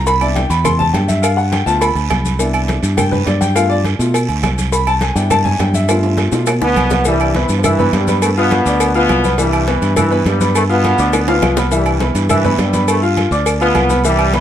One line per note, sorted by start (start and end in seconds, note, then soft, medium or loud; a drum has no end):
0.00 0.45 C2 loud
0.07 0.21 B5 loud
0.07 cowbell medium
0.07 high conga soft
0.07 low agogo medium
0.07 long guiro medium
0.07 maracas medium
0.21 0.41 B3 medium
0.21 0.41 D4 medium
0.21 0.41 E4 medium
0.21 0.36 D5 medium
0.21 high conga soft
0.21 low agogo loud
0.21 claves medium
0.21 maracas soft
0.36 0.50 G5 loud
0.36 cowbell medium
0.36 high conga loud
0.36 low timbale medium
0.36 short guiro medium
0.36 maracas soft
0.50 0.91 E2 loud
0.50 0.64 B5 loud
0.50 low agogo medium
0.50 short guiro medium
0.50 maracas medium
0.64 0.79 C6 loud
0.64 cowbell loud
0.64 high conga soft
0.64 low conga medium
0.64 low agogo loud
0.64 long guiro medium
0.64 claves medium
0.64 maracas medium
0.79 0.93 A5 loud
0.79 high conga soft
0.79 low conga medium
0.79 maracas soft
0.93 1.61 G2 loud
0.93 1.08 G5 medium
0.93 cowbell medium
0.93 high conga medium
0.93 low timbale medium
0.93 low agogo medium
0.93 short guiro medium
0.93 maracas soft
1.08 1.22 E5 medium
1.08 high conga medium
1.08 low agogo medium
1.08 short guiro medium
1.08 maracas medium
1.22 1.37 F5 medium
1.22 cowbell medium
1.22 low agogo loud
1.22 long guiro medium
1.22 claves medium
1.22 maracas loud
1.37 1.52 F#5 loud
1.37 high conga soft
1.37 maracas soft
1.52 1.66 G5 loud
1.52 cowbell medium
1.52 high conga loud
1.52 low timbale medium
1.52 low agogo medium
1.52 short guiro medium
1.52 maracas soft
1.66 1.94 D2 medium
1.66 1.86 A3 medium
1.66 1.86 B3 soft
1.66 1.86 F4 medium
1.66 1.81 A5 loud
1.66 high conga soft
1.66 short guiro medium
1.66 maracas medium
1.81 2.65 B5 loud
1.81 cowbell loud
1.81 high conga soft
1.81 low agogo loud
1.81 long guiro medium
1.81 claves medium
1.81 maracas medium
1.95 2.09 D2 medium
1.95 high conga soft
1.95 low agogo medium
1.95 maracas soft
2.10 2.78 C2 medium
2.10 cowbell medium
2.10 high conga medium
2.10 low timbale medium
2.10 low agogo loud
2.10 short guiro medium
2.10 claves medium
2.10 maracas soft
2.25 high conga medium
2.25 short guiro medium
2.25 maracas medium
2.39 3.52 B3 medium
2.39 3.52 D4 medium
2.39 3.52 E4 medium
2.39 cowbell medium
2.39 high conga soft
2.39 low agogo medium
2.39 long guiro medium
2.39 maracas loud
2.54 high conga soft
2.54 low agogo loud
2.54 claves medium
2.54 maracas soft
2.68 cowbell medium
2.68 high conga loud
2.68 low timbale medium
2.68 short guiro medium
2.68 maracas soft
2.83 3.24 G2 medium
2.83 low agogo medium
2.83 short guiro medium
2.83 maracas medium
2.97 3.12 G5 loud
2.97 cowbell loud
2.97 high conga soft
2.97 low conga medium
2.97 low agogo loud
2.97 long guiro medium
2.97 claves medium
2.97 maracas medium
3.12 3.26 B4 medium
3.12 high conga soft
3.12 low conga medium
3.12 maracas soft
3.26 3.94 G2 loud
3.26 3.41 D5 medium
3.26 cowbell medium
3.26 high conga medium
3.26 low timbale medium
3.26 low agogo medium
3.26 short guiro medium
3.26 maracas soft
3.41 3.55 G5 loud
3.41 high conga medium
3.41 low agogo medium
3.41 short guiro medium
3.41 maracas medium
3.55 3.75 A3 medium
3.55 3.75 B3 soft
3.55 3.75 F4 medium
3.55 3.70 F5 loud
3.55 cowbell medium
3.55 high conga soft
3.55 low agogo loud
3.55 long guiro medium
3.55 claves medium
3.55 maracas loud
3.69 3.79 D5 loud
3.69 high conga soft
3.69 maracas soft
3.84 cowbell medium
3.84 high conga medium
3.84 low timbale medium
3.84 low agogo medium
3.84 short guiro medium
3.84 maracas soft
3.99 4.27 B2 medium
3.99 4.12 A3 medium
3.99 4.13 B3 soft
3.99 4.13 F4 medium
3.99 high conga soft
3.99 short guiro medium
3.99 maracas medium
4.14 cowbell medium
4.14 high conga soft
4.14 low agogo loud
4.14 long guiro medium
4.14 claves medium
4.14 maracas medium
4.29 4.42 D2 medium
4.29 high conga soft
4.29 low agogo medium
4.29 maracas soft
4.43 5.11 C2 loud
4.43 cowbell medium
4.43 high conga medium
4.43 low timbale loud
4.43 low agogo loud
4.43 short guiro medium
4.43 claves medium
4.43 maracas soft
4.58 high conga medium
4.58 short guiro medium
4.58 maracas medium
4.72 4.87 B5 loud
4.72 cowbell medium
4.72 high conga soft
4.72 low agogo medium
4.72 long guiro medium
4.72 maracas loud
4.87 5.01 A5 loud
4.87 high conga soft
4.87 low agogo loud
4.87 claves medium
4.87 maracas soft
5.01 5.16 G#5 medium
5.01 cowbell medium
5.01 high conga medium
5.01 low timbale medium
5.01 short guiro medium
5.01 maracas soft
5.15 5.57 G2 loud
5.15 5.85 B3 medium
5.15 5.85 D4 soft
5.15 5.86 E4 medium
5.15 5.30 G5 medium
5.15 low agogo medium
5.15 short guiro medium
5.15 maracas medium
5.30 5.45 A5 loud
5.30 cowbell loud
5.30 high conga soft
5.30 low conga medium
5.30 low agogo loud
5.30 long guiro medium
5.30 claves medium
5.30 maracas medium
5.45 5.59 G#5 loud
5.45 high conga soft
5.45 low conga medium
5.45 maracas soft
5.59 6.27 G2 loud
5.59 5.74 G5 medium
5.59 cowbell medium
5.59 high conga medium
5.59 low timbale loud
5.59 low agogo medium
5.59 short guiro medium
5.59 maracas soft
5.73 6.15 E5 loud
5.73 high conga medium
5.73 low agogo medium
5.73 short guiro medium
5.73 maracas medium
5.89 6.32 A3 medium
5.89 6.32 B3 medium
5.89 6.32 F4 medium
5.89 cowbell loud
5.89 high timbale medium
5.89 low agogo loud
5.89 long guiro medium
5.89 claves medium
5.89 maracas medium
6.03 high conga soft
6.03 high timbale medium
6.03 maracas soft
6.17 cowbell medium
6.17 high conga medium
6.17 low timbale medium
6.17 low agogo medium
6.17 short guiro medium
6.17 maracas soft
6.32 6.59 B2 medium
6.32 6.46 A3 medium
6.32 6.46 B3 soft
6.32 6.46 F4 medium
6.32 high bongo medium
6.32 high conga soft
6.32 low timbale medium
6.32 short guiro medium
6.32 maracas medium
6.46 cowbell loud
6.46 high conga soft
6.46 low timbale loud
6.46 low agogo loud
6.46 long guiro medium
6.46 claves medium
6.46 maracas medium
6.61 6.75 D2 medium
6.61 7.04 B2 medium
6.61 7.03 B3 loud
6.61 high bongo medium
6.61 high conga soft
6.61 low agogo medium
6.61 maracas soft
6.76 7.44 C2 loud
6.76 cowbell medium
6.76 high conga medium
6.76 low agogo loud
6.76 short guiro medium
6.76 claves medium
6.76 maracas soft
6.90 low bongo medium
6.90 high conga medium
6.90 low timbale loud
6.90 short guiro medium
6.90 maracas medium
7.05 7.34 G2 medium
7.05 7.30 E3 medium
7.05 7.33 G3 loud
7.05 7.30 E4 medium
7.05 7.30 E5 medium
7.05 cowbell loud
7.05 high conga soft
7.05 low agogo medium
7.05 long guiro medium
7.05 maracas loud
7.20 high conga soft
7.20 low agogo loud
7.20 claves medium
7.20 maracas soft
7.34 7.56 E3 medium
7.34 7.59 B3 medium
7.34 7.57 E4 medium
7.34 7.59 B4 medium
7.34 7.59 B5 medium
7.34 cowbell medium
7.34 high conga loud
7.34 low timbale medium
7.34 short guiro medium
7.34 maracas soft
7.49 7.90 G2 medium
7.49 low agogo medium
7.49 short guiro medium
7.49 maracas medium
7.58 7.65 F3 medium
7.64 7.94 E3 loud
7.64 7.76 E4 medium
7.64 7.94 E4 medium
7.64 7.76 E5 medium
7.64 7.77 E6 medium
7.64 cowbell loud
7.64 high conga soft
7.64 low conga medium
7.64 low agogo loud
7.64 long guiro medium
7.64 claves medium
7.64 maracas loud
7.79 8.03 B3 loud
7.79 8.03 B4 medium
7.79 8.03 B5 medium
7.79 high conga soft
7.79 low conga medium
7.79 maracas soft
7.93 8.60 G2 loud
7.93 8.21 G2 medium
7.93 8.21 G3 medium
7.93 cowbell medium
7.93 high conga medium
7.93 low timbale loud
7.93 low agogo medium
7.93 short guiro medium
7.93 maracas soft
8.08 8.32 B3 medium
8.08 8.32 B4 medium
8.08 8.32 B5 medium
8.08 high conga medium
8.08 low agogo medium
8.08 short guiro medium
8.08 maracas medium
8.22 8.31 A2 medium
8.22 8.30 A3 medium
8.22 cowbell medium
8.22 high conga soft
8.22 low agogo loud
8.22 long guiro medium
8.22 claves medium
8.22 maracas medium
8.37 8.92 B2 loud
8.37 8.92 B3 loud
8.37 8.61 F4 medium
8.37 8.61 F5 medium
8.37 8.61 F6 medium
8.37 high conga soft
8.37 maracas soft
8.51 cowbell medium
8.51 high conga loud
8.51 low timbale medium
8.51 low agogo medium
8.51 short guiro medium
8.51 maracas soft
8.66 9.06 D2 loud
8.66 8.90 D4 medium
8.66 8.90 D5 medium
8.66 8.90 D6 medium
8.66 high conga soft
8.66 short guiro medium
8.66 maracas medium
8.80 cowbell loud
8.80 high conga soft
8.80 low agogo loud
8.80 long guiro medium
8.80 claves medium
8.80 maracas loud
8.95 9.37 B2 medium
8.95 9.36 B3 loud
8.95 9.19 F4 medium
8.95 9.19 F5 loud
8.95 9.19 F6 medium
8.95 high conga soft
8.95 low agogo medium
8.95 maracas soft
9.09 9.77 C2 loud
9.09 cowbell medium
9.09 high conga medium
9.09 low timbale medium
9.09 low agogo loud
9.09 short guiro medium
9.09 claves medium
9.09 maracas soft
9.24 9.36 B3 medium
9.24 9.36 B4 medium
9.24 9.36 B5 medium
9.24 high conga medium
9.24 short guiro medium
9.24 maracas medium
9.38 9.68 G2 medium
9.38 9.62 E3 medium
9.38 9.68 G3 loud
9.38 9.62 E4 medium
9.38 9.63 E5 medium
9.38 cowbell medium
9.38 low agogo medium
9.38 long guiro medium
9.38 maracas medium
9.53 high conga soft
9.53 low agogo loud
9.53 claves medium
9.53 maracas soft
9.67 9.95 E3 medium
9.67 9.91 B3 medium
9.67 9.96 E4 medium
9.67 9.91 B4 medium
9.67 9.92 B5 medium
9.67 cowbell medium
9.67 high conga loud
9.67 low timbale medium
9.67 short guiro medium
9.67 maracas soft
9.82 10.23 G2 medium
9.82 low agogo medium
9.82 short guiro medium
9.82 maracas medium
9.96 10.24 E3 medium
9.96 10.09 E4 medium
9.96 10.25 E4 medium
9.96 10.09 E5 medium
9.96 10.09 E6 medium
9.96 cowbell loud
9.96 high conga soft
9.96 low conga medium
9.96 low agogo loud
9.96 long guiro medium
9.96 claves medium
9.96 maracas medium
10.11 10.35 B3 medium
10.11 10.35 B4 loud
10.11 10.35 B5 medium
10.11 high conga soft
10.11 maracas soft
10.26 10.93 G2 loud
10.26 10.54 G2 medium
10.26 10.54 G3 medium
10.26 cowbell medium
10.26 high conga medium
10.26 low timbale medium
10.26 low agogo medium
10.26 short guiro medium
10.26 maracas soft
10.40 10.64 B3 medium
10.40 10.65 B4 medium
10.40 10.65 B5 medium
10.40 high conga medium
10.40 low agogo medium
10.40 short guiro medium
10.40 maracas medium
10.55 10.63 A2 medium
10.55 10.63 A3 medium
10.55 cowbell medium
10.55 low agogo loud
10.55 long guiro medium
10.55 claves medium
10.55 maracas loud
10.69 11.25 B2 medium
10.69 11.25 B3 loud
10.69 10.93 F4 medium
10.69 10.93 F5 medium
10.69 10.94 F6 medium
10.69 high conga soft
10.69 maracas soft
10.84 cowbell medium
10.84 high conga loud
10.84 low timbale medium
10.84 low agogo medium
10.84 short guiro medium
10.84 maracas soft
10.98 11.39 D2 loud
10.98 11.23 D4 medium
10.98 11.23 D5 medium
10.98 11.23 D6 medium
10.98 high conga soft
10.98 short guiro medium
10.98 maracas medium
11.13 cowbell loud
11.13 high bongo medium
11.13 high conga soft
11.13 low agogo loud
11.13 long guiro medium
11.13 claves medium
11.13 maracas medium
11.28 11.70 B2 medium
11.28 11.70 B3 loud
11.28 11.52 F4 medium
11.28 11.52 F5 loud
11.28 11.52 F6 loud
11.28 high bongo medium
11.28 high conga soft
11.28 high timbale loud
11.28 low agogo medium
11.28 maracas soft
11.42 12.09 C2 medium
11.42 cowbell medium
11.42 low bongo loud
11.42 high conga medium
11.42 low agogo loud
11.42 short guiro medium
11.42 claves medium
11.42 maracas soft
11.57 11.69 B3 medium
11.57 11.69 B4 medium
11.57 11.69 B5 medium
11.57 low bongo loud
11.57 low timbale loud
11.57 short guiro medium
11.57 maracas medium
11.71 12.00 G2 medium
11.71 11.95 E3 medium
11.71 12.00 G3 medium
11.71 11.96 E4 medium
11.71 11.96 E5 medium
11.71 cowbell medium
11.71 low agogo medium
11.71 long guiro medium
11.71 maracas loud
11.85 high conga soft
11.85 low agogo loud
11.85 claves medium
11.85 maracas soft
12.00 12.29 E3 medium
12.00 12.25 B3 medium
12.00 12.30 E4 medium
12.00 12.25 B4 medium
12.00 12.25 B5 medium
12.00 cowbell medium
12.00 high conga loud
12.00 low timbale medium
12.00 short guiro medium
12.00 maracas soft
12.15 12.56 G2 loud
12.15 low agogo medium
12.15 short guiro medium
12.15 maracas medium
12.29 12.57 E3 medium
12.29 12.42 E4 medium
12.29 12.57 E4 medium
12.29 12.42 E5 medium
12.29 12.42 E6 medium
12.29 cowbell loud
12.29 high conga soft
12.29 low conga medium
12.29 low agogo loud
12.29 long guiro medium
12.29 claves medium
12.29 maracas medium
12.44 12.68 B3 loud
12.44 12.68 B4 medium
12.44 12.68 B5 medium
12.44 high conga soft
12.44 low conga medium
12.44 maracas soft
12.58 13.26 G2 medium
12.58 12.87 G2 medium
12.58 12.87 G3 medium
12.58 cowbell medium
12.58 high conga medium
12.58 low timbale loud
12.58 low agogo medium
12.58 short guiro medium
12.58 maracas soft
12.73 12.97 B3 medium
12.73 12.97 B4 medium
12.73 12.98 B5 medium
12.73 high conga medium
12.73 low agogo medium
12.73 short guiro medium
12.73 maracas medium
12.88 13.03 A2 medium
12.88 13.02 A3 medium
12.88 cowbell medium
12.88 high conga soft
12.88 low agogo loud
12.88 long guiro medium
12.88 claves medium
12.88 maracas loud
13.02 13.26 F4 medium
13.02 13.27 F5 medium
13.02 13.27 F6 medium
13.02 high conga soft
13.02 maracas soft
13.17 cowbell medium
13.17 high conga medium
13.17 low timbale medium
13.17 low agogo medium
13.17 short guiro medium
13.17 maracas soft
13.31 13.72 D2 loud
13.31 13.56 D4 medium
13.31 13.56 D5 medium
13.31 13.56 D6 medium
13.31 high conga soft
13.31 short guiro medium
13.31 maracas medium
13.46 cowbell loud
13.46 high conga soft
13.46 low agogo loud
13.46 long guiro medium
13.46 claves medium
13.46 maracas medium
13.61 14.02 B2 medium
13.61 14.02 B3 loud
13.61 13.85 F4 medium
13.61 13.85 F5 medium
13.61 13.85 F6 medium
13.61 high conga soft
13.61 low agogo medium
13.61 maracas soft
13.75 14.40 C2 loud
13.75 cowbell medium
13.75 high conga medium
13.75 low timbale medium
13.75 low agogo loud
13.75 short guiro medium
13.75 claves medium
13.75 maracas soft
13.89 14.02 B3 medium
13.89 14.02 B4 medium
13.89 14.02 B5 medium
13.89 high conga medium
13.89 short guiro medium
13.89 maracas medium
14.04 14.33 G2 medium
14.04 14.28 E3 medium
14.04 14.32 G3 loud
14.04 14.28 E4 medium
14.04 14.29 E5 loud
14.04 cowbell medium
14.04 high conga soft
14.04 low agogo medium
14.04 long guiro medium
14.04 maracas loud
14.19 high conga soft
14.19 low agogo loud
14.19 claves medium
14.19 maracas soft
14.33 14.40 E3 medium
14.33 14.40 B3 medium
14.33 14.40 E4 medium
14.33 14.40 B4 medium
14.33 14.40 B5 medium
14.33 cowbell medium
14.33 high conga loud
14.33 low timbale medium
14.33 short guiro medium
14.33 maracas soft